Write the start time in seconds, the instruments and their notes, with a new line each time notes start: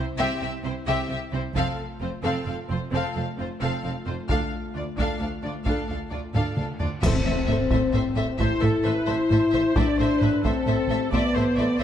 Already playing: french horn section C4 E4
0.18 double bass section C2, cello section C3, viola section C4, violin section G4 E5
0.41 double bass section C2, cello section C3, viola section C4, violin section G4 E5
0.63 double bass section C2, cello section C3, viola section C4, violin section E4 C5
0.87 double bass section C2, cello section C3, viola section C4, violin section G4 E5
1.09 double bass section C2, cello section C3, viola section C4, violin section G4 E5
1.32 double bass section C2, cello section C3, viola section C4, violin section E4 C5
1.55 double bass section F1, cello section F2, french horn section A3 F4, viola section C4, violin section A4 F5, taiko
2.00 double bass section F1, cello section F2, viola section C4, violin section F4 C5
2.23 double bass section F1, cello section F2, viola section C4, violin section A4 F5
2.45 double bass section F1, cello section F2, viola section C4, violin section A4 F5
2.68 double bass section F1, cello section F2, viola section C4, violin section F4 C5
2.91 double bass section F1, cello section F2, viola section C4, violin section A4 F5
3.14 double bass section F1, cello section F2, viola section C4, violin section A4 F5
3.37 double bass section F1, cello section F2, viola section C4, violin section F4 C5
3.59 double bass section F1, cello section F2, viola section C4, violin section A4 F5
3.83 double bass section F1, cello section F2, viola section C4, violin section A4 F5
4.05 double bass section F1, cello section F2, viola section C4, violin section F4 C5
4.28 double bass section D2, cello section D2, viola section D4, violin section A4 F5, taiko
4.74 cello section D2, double bass section D2, viola section D4, violin section F4 D5
4.97 cello section D2, double bass section D2, viola section D4, violin section A4 F5, taiko
5.19 cello section D2, double bass section D2, viola section D4, violin section A4 F5
5.43 cello section D2, double bass section D2, viola section D4, violin section F4 D5
5.64 cello section D2, double bass section D2, viola section D4, violin section F5, taiko
5.68 violin section A4
5.88 cello section D2, double bass section D2, viola section D4, violin section A4 F5
6.11 cello section D2, double bass section D2, viola section D4, violin section F4 D5
6.34 cello section D2, double bass section D2, viola section D4, violin section A4 F5, taiko low-mid
6.56 cello section D2, double bass section D2, viola section D4, violin section A4 F5, taiko mid
6.79 cello section D2, double bass section D2, viola section D4, violin section F4 D5, taiko low
7.02 double bass section A1, cello section A2, timpani A2, french horn section C4, violin section A4 C5 E5, concert bass drum, taiko, crash
7.24 double bass section A1, cello section A2, violin section E5
7.29 violin section A4 C5
7.47 double bass section A1, cello section A2, violin section E5, taiko low-mid
7.51 violin section A4 C5
7.70 double bass section A1, cello section A2, violin section A4 C5 E5, taiko
7.92 double bass section A1, cello section A2, violin section A4 C5 E5, taiko low-mid
8.15 double bass section A1, cello section A2, violin section A4 C5 E5
8.38 double bass section A1, cello section A2, french horn section E4, violin section A4 C5 E5, viola section C5, taiko
8.61 double bass section A1, cello section A2, violin section A4 C5 E5, viola section A4, taiko low-mid
8.83 double bass section A1, cello section A2, violin section A4 C5 E5, viola section B4
9.06 double bass section A1, cello section A2, violin section A4 C5 E5, viola section C5
9.30 double bass section A1, cello section A2, violin section A4 C5 E5, taiko low-mid
9.53 double bass section A1, cello section A2, violin section A4 C5 E5
9.75 double bass section A1, cello section A2, french horn section D4, violin section A4 C5 E5, viola section D5, taiko
9.99 double bass section A1, cello section A2, violin section A4 C5 E5, viola section C5
10.21 double bass section A1, cello section A2, violin section A4 C5 E5, viola section B4, taiko low-mid
10.44 double bass section A1, cello section A2, french horn section C4, viola section A4, violin section A4 C5 E5, taiko
10.67 double bass section A1, cello section A2, violin section A4 C5 E5, taiko low-mid
10.90 double bass section A1, cello section A2, violin section A4 C5 E5
11.12 double bass section A1, cello section A2, french horn section B3, violin section A4 C5 E5, viola section D5, taiko
11.35 double bass section A1, cello section A2, violin section A4 C5 E5, viola section C5, taiko low-mid
11.57 double bass section A1, cello section A2, violin section A4 C5 E5, viola section D5
11.79 french horn section A3, violin section E5